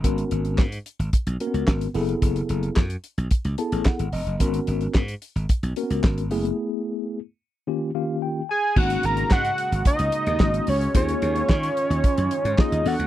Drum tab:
CC |----------------|----------------|----------------|----------------|
HH |xxxx-xxxxxxx-xox|xxxx-xxxxxxx-xox|xxxx-xxxxxxx-xox|----------------|
CP |----x-------x---|----x-------x---|----x-------x---|----------------|
SD |----o-------o---|----o-------o---|----o-------o---|----------------|
BD |o---o---o---o---|o---o---o---o---|o---o---o---o---|----------------|

CC |x---------------|----------------|
HH |-xxx-xxxxxxx-xox|xxxx-xxxxxxx-xox|
CP |----x-------x---|----x-------x---|
SD |----o-------o---|----o-------o---|
BD |o---o---o---o---|o---o---o---o---|